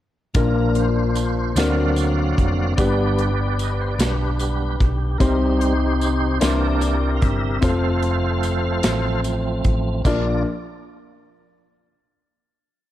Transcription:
0.34 fingered electric bass A#1, grand piano A#2 A#3 D4 F4 A#4, tonewheel organ F3 A#3 D4 F4 A#4, kick, closed hi-hat, tambourine
0.75 tonewheel organ F4 C5, closed hi-hat
1.15 closed hi-hat, tambourine
1.56 fingered electric bass D2, grand piano D3 C4 D4 F#4 A#4, tonewheel organ F#3 A#3 C4 F#4 D5 F5, snare, closed hi-hat, tambourine
1.96 closed hi-hat, tambourine
2.38 fingered electric bass F1, kick, closed hi-hat
2.76 fingered electric bass G1, grand piano G2 B3 D4 G4 B4, tonewheel organ G3 B3 D4 G4 B4 D5, kick, closed hi-hat, tambourine
3.18 closed hi-hat
3.59 tonewheel organ D#5, closed hi-hat, tambourine
3.72 tonewheel organ D5
3.81 tonewheel organ C5
3.91 tonewheel organ D5
3.98 fingered electric bass B1, tonewheel organ D4 G4 B4, snare, closed hi-hat, tambourine
4.39 tonewheel organ G3 B3 D4, closed hi-hat, tambourine
4.80 fingered electric bass B1, kick, closed hi-hat
5.18 fingered electric bass C2, grand piano C3 C4 D#4 G4 C5, tonewheel organ G3 C4 D#4 G4 A#4, kick, closed hi-hat, tambourine
5.60 tonewheel organ D#4 G4 C5, closed hi-hat
6.01 closed hi-hat, tambourine
6.40 fingered electric bass C2, grand piano C3 D4 E4 A#4 C5, tonewheel organ E3 A#3 D4 G4 A#4 D5, snare, closed hi-hat, tambourine
6.81 closed hi-hat, tambourine
7.17 tonewheel organ E5 F5
7.22 fingered electric bass G1, kick, closed hi-hat
7.61 fingered electric bass F1, tonewheel organ F3 A3 C4 A4 C5 F5, grand piano C4 F4 A4 C5, kick, closed hi-hat, tambourine
8.03 closed hi-hat
8.43 closed hi-hat, tambourine
8.83 fingered electric bass A1, snare, closed hi-hat, tambourine
9.24 closed hi-hat, tambourine
9.64 fingered electric bass A1, kick, closed hi-hat
10.04 fingered electric bass A#1, grand piano A#1 D4 F4 A#4 D5, tonewheel organ A#3 D4 F4 D5, kick, crash, tambourine

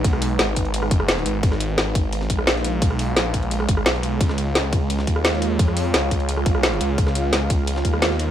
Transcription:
Already playing: analog synth pad G#3 D#4 B4 F#5
0.04 detuned saw bass B1, kick, closed hi-hat, ride
0.13 cross-stick
0.22 closed hi-hat, open hi-hat
0.39 detuned saw bass G#1, snare, closed hi-hat, ride
0.56 kick, closed hi-hat, ride
0.65 ride
0.74 closed hi-hat, ride
0.82 cross-stick
0.91 detuned saw bass F#1, kick, closed hi-hat, ride
1.00 cross-stick
1.09 snare, closed hi-hat, ride
1.17 snare
1.26 detuned saw bass G#1, closed hi-hat, ride
1.43 detuned saw bass G#1, analog synth pad F5, kick, closed hi-hat, ride
1.52 cross-stick, snare
1.60 closed hi-hat, ride
1.78 snare, closed hi-hat, ride
1.95 kick, closed hi-hat, ride
2.13 closed hi-hat, ride
2.21 snare
2.30 detuned saw bass A#1, kick, closed hi-hat, ride
2.39 cross-stick
2.47 snare, closed hi-hat, ride
2.56 snare
2.65 closed hi-hat, ride
2.82 detuned saw bass B1, kick, closed hi-hat, ride
2.91 cross-stick
2.99 closed hi-hat, open hi-hat
3.17 detuned saw bass A#1, snare, closed hi-hat, ride
3.34 kick, closed hi-hat, ride
3.43 ride
3.51 closed hi-hat, ride
3.60 cross-stick
3.69 detuned saw bass G#1, kick, closed hi-hat, ride
3.77 cross-stick
3.86 detuned saw bass B1, snare, closed hi-hat, ride
3.95 snare
4.03 closed hi-hat, ride
4.21 detuned saw bass C#2, analog synth pad F4 C#5 F5, kick, closed hi-hat, ride
4.29 cross-stick, snare
4.38 closed hi-hat, ride
4.55 snare, closed hi-hat, ride
4.73 kick, closed hi-hat, ride
4.90 closed hi-hat, ride
4.99 snare
5.07 detuned saw bass D#2, kick, closed hi-hat, ride
5.16 cross-stick
5.25 snare, closed hi-hat, ride
5.33 snare
5.42 closed hi-hat, ride
5.59 detuned saw bass F2, kick, closed hi-hat, ride
5.68 cross-stick
5.77 closed hi-hat, open hi-hat
5.94 detuned saw bass C#2, snare, closed hi-hat, ride
6.11 kick, closed hi-hat, ride
6.20 ride
6.29 closed hi-hat, ride
6.37 cross-stick
6.46 detuned saw bass B1, kick, closed hi-hat, ride
6.55 cross-stick
6.63 snare, closed hi-hat, ride
6.72 snare
6.81 detuned saw bass C#2, closed hi-hat, ride
6.98 detuned saw bass C#2, analog synth pad B4, kick, closed hi-hat, ride
7.07 cross-stick, snare
7.15 closed hi-hat, ride
7.33 snare, closed hi-hat, ride
7.50 kick, closed hi-hat, ride
7.67 closed hi-hat, ride
7.76 snare
7.85 detuned saw bass D#2, kick, closed hi-hat, ride
7.93 cross-stick
8.02 snare, closed hi-hat, ride
8.11 snare
8.19 closed hi-hat, ride

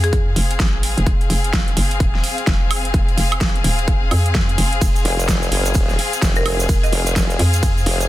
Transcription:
Already playing: fm bass F2, string section C4 G#4 F5
0.04 marimba G#4, closed hi-hat
0.13 kick, closed hi-hat
0.36 fm bass F1, open hi-hat
0.51 closed hi-hat
0.60 fm bass G#1, kick, snare, closed hi-hat
0.83 open hi-hat
0.97 fm bass F1, closed hi-hat
1.07 fm bass F1, kick, closed hi-hat
1.21 closed hi-hat
1.30 fm bass F1, open hi-hat
1.44 closed hi-hat
1.53 kick, snare, closed hi-hat
1.68 closed hi-hat
1.77 fm bass F#1, open hi-hat
1.91 closed hi-hat
2.00 fm bass D#1, kick, closed hi-hat
2.15 snare
2.24 open hi-hat
2.38 closed hi-hat
2.47 fm bass F1, kick, snare, closed hi-hat
2.71 open hi-hat, high woodblock
2.85 closed hi-hat
2.94 fm bass F1, kick, closed hi-hat
3.09 closed hi-hat
3.17 fm bass F1, open hi-hat
3.32 closed hi-hat, high woodblock
3.41 kick, snare, closed hi-hat
3.55 closed hi-hat
3.64 fm bass D#1, open hi-hat
3.79 closed hi-hat
3.88 kick, closed hi-hat
4.11 fm bass F2, open hi-hat, high woodblock
4.26 closed hi-hat
4.35 kick, snare, closed hi-hat
4.49 closed hi-hat
4.58 fm bass F1, open hi-hat
4.73 closed hi-hat
4.81 fm bass F1, kick, closed hi-hat, ride, shaker
4.95 closed hi-hat, shaker
5.05 wobble bass F1, open hi-hat
5.20 closed hi-hat, shaker
5.28 kick, snare, closed hi-hat, ride, shaker
5.43 closed hi-hat, shaker
5.52 wobble bass F#1, open hi-hat
5.65 closed hi-hat, shaker
5.74 wobble bass D#1, kick, closed hi-hat, ride, shaker
5.89 snare, shaker
5.99 open hi-hat
6.13 closed hi-hat, shaker
6.22 wobble bass F1, kick, snare, closed hi-hat, ride, shaker
6.35 marimba A#4, shaker
6.46 marimba A#4, open hi-hat, high woodblock
6.60 closed hi-hat, shaker
6.69 fm bass F1, kick, closed hi-hat, ride, shaker
6.83 marimba D#5, closed hi-hat, shaker
6.92 wobble bass F1, open hi-hat
7.06 closed hi-hat, shaker
7.16 kick, snare, closed hi-hat, ride, shaker
7.30 closed hi-hat, shaker
7.39 fm bass F2, open hi-hat
7.53 closed hi-hat, shaker
7.63 kick, closed hi-hat, ride, shaker
7.77 shaker
7.86 wobble bass F1, open hi-hat
8.01 closed hi-hat, shaker

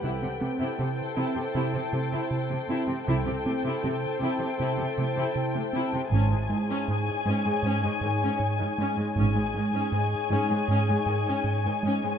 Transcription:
0.03 double bass section C2, cello section C3, analog synth bass C3, viola section E4 A4, ambient pad E4 C5 A5, violin section G5
0.21 cello section C3, viola section C4
0.40 cello section C3, viola section A3, analog synth bass C4
0.59 cello section C3, viola section E4
0.78 cello section C3, analog synth bass C3, viola section C4
1.16 cello section C3, analog synth bass C4, viola section E4
1.35 cello section C3, viola section C4
1.54 analog synth bass C3, cello section C3, viola section E4
1.73 cello section C3, viola section C4
1.92 cello section C3, analog synth bass C3, viola section A3
2.12 cello section C3, viola section E4
2.31 analog synth bass C3
2.49 cello section C3, viola section A3
2.68 cello section C3, analog synth bass C4, viola section E4
2.87 cello section C3, viola section C4
3.07 double bass section C2, cello section C3, analog synth bass C3, viola section E4 A4, ambient pad E4 C5 A5, violin section G5
3.26 cello section C3, viola section C4
3.45 cello section C3, viola section A3, analog synth bass C4
3.64 cello section C3, viola section E4
3.83 cello section C3, analog synth bass C3, viola section C4
4.21 cello section C3, analog synth bass C4, viola section E4
4.39 cello section C3, viola section C4
4.59 cello section C3, analog synth bass C3, viola section E4
4.78 cello section C3, viola section C4
4.97 cello section C3, analog synth bass C3, viola section A3
5.16 cello section C3, viola section E4
5.36 analog synth bass C3
5.55 cello section C3, viola section A3
5.73 cello section C3, analog synth bass C4, viola section E4
5.93 cello section C3, viola section C4
6.12 double bass section G#1, cello section G#2, analog synth bass G#2, viola section C#4 G#4, ambient pad D#4 C#5 G#5, violin section G#5
6.31 cello section G#2, viola section G#3
6.49 cello section G#2, viola section D#3, analog synth bass G#3
6.69 cello section G#2, viola section C#4
6.88 analog synth bass G#2, cello section G#2, viola section G#3
7.26 cello section G#2, analog synth bass G#3, viola section C#4
7.45 cello section G#2, viola section G#3
7.63 analog synth bass G#2, cello section G#2, viola section C#4
7.83 cello section G#2, viola section G#3
8.01 analog synth bass G#2, cello section G#2, viola section D#3
8.22 cello section G#2, viola section C#4
8.39 analog synth bass G#2
8.59 cello section G#2, viola section D#3
8.78 cello section G#2, analog synth bass G#3, viola section C#4
8.97 cello section G#2, viola section G#3
9.16 double bass section G#1, analog synth bass G#2, cello section G#2, viola section C#4 G#4, ambient pad D#4 C#5 G#5, violin section G#5
9.35 cello section G#2, viola section G#3
9.54 cello section G#2, viola section D#3, analog synth bass G#3
9.73 cello section G#2, viola section C#4
9.92 analog synth bass G#2, cello section G#2, viola section G#3
10.30 cello section G#2, analog synth bass G#3, viola section C#4
10.50 cello section G#2, viola section G#3
10.68 analog synth bass G#2, cello section G#2, viola section C#4
10.88 cello section G#2, viola section G#3
11.06 analog synth bass G#2, cello section G#2, viola section D#3
11.26 cello section G#2, viola section C#4
11.44 analog synth bass G#2
11.65 cello section G#2, viola section D#3
11.83 cello section G#2, analog synth bass G#3, viola section C#4
12.02 cello section G#2, viola section G#3

